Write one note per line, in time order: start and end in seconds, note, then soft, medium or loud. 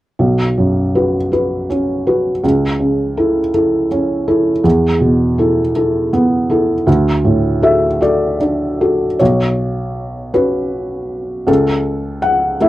0.19 2.39 B1 soft
0.58 1.17 F#2 soft
0.95 1.28 F#4 soft
0.95 1.28 B4 soft
1.32 1.66 F#4 soft
1.32 1.66 B4 soft
1.70 2.29 C#4 soft
2.07 2.40 F#4 soft
2.07 2.40 B4 soft
2.44 4.60 C#2 soft
2.80 3.39 C#3 soft
3.17 3.50 E4 soft
3.17 3.50 A4 soft
3.54 3.87 E4 soft
3.54 3.87 A4 soft
3.91 4.50 C#4 soft
4.28 4.61 E4 soft
4.28 4.61 A4 soft
4.64 6.83 E2 soft
5.01 5.60 B2 soft
5.38 5.71 E4 soft
5.38 5.72 A4 soft
5.75 6.09 E4 soft
5.75 6.09 A4 soft
6.13 6.72 B3 soft
6.50 6.83 E4 soft
6.50 6.84 A4 soft
6.87 9.16 D2 soft
7.25 7.87 A2 soft
7.62 7.98 F#4 soft
7.62 7.98 A4 soft
7.62 7.99 E5 medium
8.01 8.36 F#4 soft
8.01 8.37 A4 soft
8.01 9.16 D5 soft
8.41 9.04 D4 soft
8.81 9.16 F#4 soft
8.81 9.16 A4 soft
9.19 10.31 B1 soft
9.19 10.30 C#5 soft
10.34 11.44 C#4 soft
10.34 11.44 F#4 soft
10.34 11.44 B4 soft
11.47 12.56 C#2 soft
11.47 12.19 A4 soft
12.22 12.57 F#5 medium
12.60 12.69 A3 soft
12.60 12.69 E4 soft
12.60 12.69 A4 soft
12.60 12.69 E5 soft